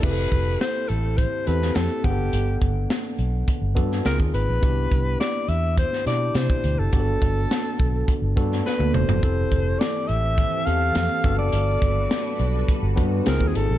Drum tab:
CC |x---------------|----------------|----------------|----------------|
HH |--x-x-x-x-x-x-x-|x-x-x-x-x-x-x-x-|x-x-x-x-x-x-x-x-|x-x-x-x-x-x-----|
SD |----o------oo---|----o------oo---|----o----oo-o---|----o------oo---|
T1 |----------------|----------------|----------------|-------------o--|
T2 |----------------|----------------|----------------|--------------o-|
FT |----------------|----------------|----------------|---------------o|
BD |o-o-----o-----o-|--o-----o-o--o--|o-o-----o----o--|o-o---o-o-o-----|

CC |----------------|----------------|
HH |x-x-x-x-x-x-x-x-|x-x-x-x-x-x-x-x-|
SD |----o-------o---|----o-------o---|
T1 |----------------|----------------|
T2 |----------------|----------------|
FT |----------------|----------------|
BD |o-o-----o-----o-|--o-----o-o--o--|